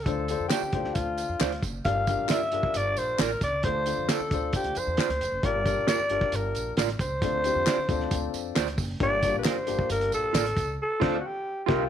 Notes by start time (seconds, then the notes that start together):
0.03 D2 D3 D4 A4, kick, closed hi-hat, tambourine
0.07 F4 A4 C5
0.28 D4 F4 A4 C5, closed hi-hat, tambourine
0.39 F2
0.48 F4 G4 C5 D5, snare, clap, closed hi-hat, tambourine
0.62 muted upright bass stroke
0.72 D2 D4 F4 A4 C5, kick, closed hi-hat
0.84 snare
0.95 D2 F4, kick, closed hi-hat, tambourine
1.18 closed hi-hat, tambourine
1.29 F2
1.40 D2 F4 C5 D5, snare, clap, closed hi-hat, tambourine
1.52 closed hi-hat
1.63 F#1, kick, closed hi-hat, tambourine
1.84 G1 G2 D4 F4 G4 A#4 F5, kick, closed hi-hat, tambourine
2.07 D4 F4 G4 A#4, kick, closed hi-hat, tambourine
2.19 A#1
2.28 F4 A#4 D5 E5, snare, clap, closed hi-hat, tambourine
2.42 muted upright bass stroke
2.52 G1 D4 F4 G4 A#4, closed hi-hat
2.63 kick
2.74 G1 D5, closed hi-hat, tambourine
2.97 A#1 C5, closed hi-hat, tambourine
3.18 A1 F4 A#4 D5, snare, clap, closed hi-hat, tambourine
3.41 C#2 D5, kick, closed hi-hat, tambourine
3.63 D2 D3 D4 F4 A4 C5, kick, closed hi-hat
3.86 D4 F4 A4 C5, closed hi-hat, tambourine
3.97 F2
4.08 F4 A4 C5 D5, snare, clap, closed hi-hat, tambourine
4.20 muted upright bass stroke
4.31 D2 D4 F4 A4 C5, kick, closed hi-hat, tambourine
4.53 G4, kick, closed hi-hat, tambourine
4.64 D2, closed hi-hat
4.75 F2 C5, closed hi-hat, tambourine
4.87 E2
4.97 F4 C5 D5, snare, clap, closed hi-hat, tambourine
5.09 D2, snare, closed hi-hat
5.20 F1, closed hi-hat, tambourine
5.32 F#1
5.43 G1 G2 D4 F4 G4 A#4 D5, kick, closed hi-hat
5.65 D4 F4 G4 A#4, kick, closed hi-hat, tambourine
5.77 A#1
5.87 F4 A#4 D5, snare, clap, closed hi-hat, tambourine
5.99 muted upright bass stroke
6.10 G1 D4 F4 G4 A#4, closed hi-hat
6.21 kick, snare
6.32 G1 A#4, closed hi-hat, tambourine
6.55 A#1, closed hi-hat, tambourine
6.77 A1 F4 A#4 D5, snare, clap, closed hi-hat, tambourine
6.88 snare, closed hi-hat
6.99 C#2 C5, kick, closed hi-hat, tambourine
7.22 D2 D3 C4 D4 F4 A4, kick, closed hi-hat, tambourine
7.44 C4 D4 E4 G4, closed hi-hat, tambourine
7.50 F4
7.55 F2
7.66 F4 C5 D5, snare, clap, closed hi-hat, tambourine
7.77 muted upright bass stroke
7.89 D2 C4 D4 F4 A4, kick, closed hi-hat, tambourine
8.00 snare
8.11 D2, kick, closed hi-hat, tambourine
8.34 F2, closed hi-hat, tambourine
8.55 D2 F4 C5 D5, snare, clap, closed hi-hat, tambourine
8.67 snare, closed hi-hat
8.78 F#1, kick, open hi-hat, tambourine
9.00 G1 G2 A#3 D4 F4 G4 D5, kick, closed hi-hat
9.22 A#3 D4 F4 F#4, kick, closed hi-hat, tambourine
9.29 G4
9.34 A#1
9.39 B4
9.44 F4 A#4 C5 D5, snare, clap, closed hi-hat, tambourine
9.56 muted upright bass stroke
9.67 G1 A#3 D4 F4 G4, closed hi-hat, tambourine
9.79 kick
9.90 G1 A#4, closed hi-hat, tambourine
10.01 closed hi-hat
10.12 A#1 A4, closed hi-hat, tambourine
10.33 A1 F4 A#4 D5, snare, clap, closed hi-hat, tambourine
10.46 closed hi-hat
10.57 C#2, kick, closed hi-hat, tambourine
10.82 A4
11.00 D2 C4 D4 F4 A4 C5, kick, snare, crash
11.20 F#4
11.27 G4
11.64 F4 G4 A#4
11.68 C2 C3 C4 F4 G4 A#4 C5, kick, snare